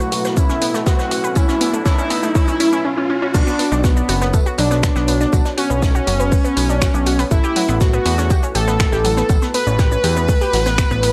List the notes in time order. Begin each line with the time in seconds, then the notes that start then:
Already playing: B2 F#3 A3 E4 F#4 B4, riser
0.00 shaker
0.12 F#4, open hi-hat, tambourine, shaker
0.25 B4, snare, shaker
0.37 C#4 E4, kick, tambourine, shaker
0.49 C#4, snare, shaker
0.62 B3, open hi-hat, tambourine, shaker
0.74 A3, snare, shaker
0.86 B3 F#4, kick, snare, tambourine, shaker
0.99 B4, snare, shaker
1.11 F#4, open hi-hat, tambourine, shaker
1.24 B4, shaker
1.35 C#4 E4, kick, tambourine, shaker
1.48 C#4, snare, shaker
1.61 B3, open hi-hat, tambourine, shaker
1.73 A3, shaker
1.85 C#4 E4, kick, snare, tambourine, shaker
1.98 C#4, shaker
2.10 B3, open hi-hat, tambourine, shaker
2.23 A3, closed hi-hat, shaker
2.35 C#4 E4, kick, open hi-hat, shaker
2.47 C#4, closed hi-hat, shaker
2.60 C#4 E4, open hi-hat, tambourine, shaker
2.73 C#4, shaker
2.85 C#4
2.97 C#4
3.10 C#4
3.22 C#4
3.34 B1 B3 D4 F#4 B4 C#5, kick, crash, tambourine, shaker
3.47 B3 B4, shaker
3.59 B3 B4, open hi-hat, tambourine
3.72 B1 D4 D5, shaker
3.84 B3 F#4 F#5, kick, snare, tambourine, shaker
3.97 D4 D5, shaker
4.09 F#1 F#4 F#5, open hi-hat, tambourine, shaker
4.21 B3 B4, snare, shaker
4.33 A3 A4, kick, tambourine, shaker
4.46 F#4 F#5, shaker
4.58 B1 F#3 D4 F#4, open hi-hat, tambourine, shaker
4.71 B3 B4, snare, shaker
4.83 B3 B4, finger snap, kick, snare, tambourine, shaker
4.95 B1 B3 B4, snare, shaker
5.08 B3 B4, open hi-hat, tambourine, shaker
5.21 D4 D5, snare, shaker
5.33 B1 F#4 F#5, kick, tambourine, shaker
5.45 D4 D5, snare, shaker
5.57 C#4 F#4 F#5, open hi-hat, tambourine
5.70 B1 B3 B4, shaker
5.82 A3 A4, kick, snare, tambourine, shaker
5.95 F#4 F#5, shaker
6.07 F#1 F#3 F#4, open hi-hat, tambourine, shaker
6.20 B3 B4, closed hi-hat, shaker
6.32 B3 B4, kick, open hi-hat, shaker
6.44 B3 B4, closed hi-hat, shaker
6.57 B1 B3 B4, open hi-hat, tambourine, shaker
6.69 D4 D5, shaker
6.81 F#4 F#5, finger snap, kick, snare, tambourine, shaker
6.94 B1 D4 D5, closed hi-hat, shaker
7.06 F#4 F#5, open hi-hat, tambourine, shaker
7.19 B3 B4, open hi-hat, shaker
7.31 A1 A3 E4 A4 B4, kick, tambourine, shaker
7.44 G4 G5, shaker
7.56 F#3 F#4, open hi-hat, tambourine
7.69 A1 B3 B4, shaker
7.81 B3 F#4 B4, kick, snare, tambourine, shaker
7.93 B3 B4, shaker
8.05 E2 B3 B4, open hi-hat, tambourine, shaker
8.18 C#4 C#5, snare, shaker
8.30 G4 G5, kick, tambourine, shaker
8.43 C#4 C#5, shaker
8.55 A1 G4 A4 G5, open hi-hat, tambourine, shaker
8.68 B3 B4, snare, shaker
8.80 A3 A4, finger snap, kick, snare, tambourine, shaker
8.92 A1 G4 G5, snare, shaker
9.04 F#3 F#4, open hi-hat, tambourine, shaker
9.16 B3 B4, snare, shaker
9.29 A1 B3 F#4 B4, kick, tambourine, shaker
9.42 B3 B4, snare, shaker
9.54 B3 B4, open hi-hat, tambourine, shaker
9.67 A1 C#4 C#5, shaker
9.79 G4 G5, kick, snare, tambourine, shaker
9.92 C#4 C#5, shaker
10.04 E2 G4 G5, open hi-hat, tambourine, shaker
10.16 B3 B4, closed hi-hat, shaker
10.29 A3 A4, kick, open hi-hat, shaker
10.41 G4 G5, closed hi-hat, shaker
10.53 A1 F#3 F#4, snare, open hi-hat, tambourine, shaker
10.66 B3 B4, snare, tambourine, shaker
10.78 B3 B4, finger snap, kick, snare, tambourine, shaker
10.91 A1 B3 B4, closed hi-hat, shaker
11.03 B3 B4, open hi-hat, tambourine, shaker